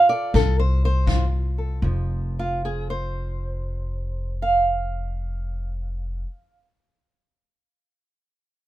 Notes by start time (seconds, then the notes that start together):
Already playing: F3 F4
0.09 A4 D5
0.34 C2 C3 A4, kick
0.60 C5
0.85 C5
1.06 F3 F4, kick
1.58 A4
1.82 F1 F2 F3
2.39 F4
2.65 G#4
2.90 C5
4.42 F5